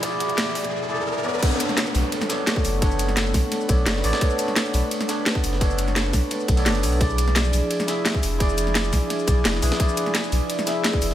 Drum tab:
CC |----------------|x---------------|----------------|----------------|
RD |x-x-x-x---------|x-x-xxx-x-x-x-x-|x-x-x-x-x-x-x--x|x-x-xxx-x-x-x-x-|
HH |x-xxx-ox--------|x-x-x-o-x-x-x-o-|x-x-x-o-x-x-x-o-|x-x-x-o-x-x-x-o-|
SH |----------------|-xx--xx--xx---x-|-xx--xx--xx---x-|-xx--xx--xx---x-|
SD |----o-----------|---oo----oo-o---|---oo-o-o---oo-o|---oo----oo-o--o|
BD |o-----o---------|o------------o--|o-----o---o-----|o------------o--|

CC |----------------|----------------|----------------|----------------|
RD |x-x-x-x-x-xx-x-x|x-x-xxx-x-x-x-x-|x-x-x-x-x-x-x--x|x-x-xxx-x-x-x-x-|
HH |x-x-x-o-x-x-x-o-|x-x-x-o-x-x-x-o-|x-x-x-o-x-x-x-o-|x-x-x-o-x-x-x-o-|
SH |-xx--xx--xx---x-|-xx--xx--xx---x-|-xx--xx--xx---x-|-xx--xx--xx---x-|
SD |---oo-o-o---o---|---oo----oo-o---|---oo-o-o---oo-o|---oo----oo-o--o|
BD |o-----o---o-----|o------------o--|o-----o---o-----|o------------o--|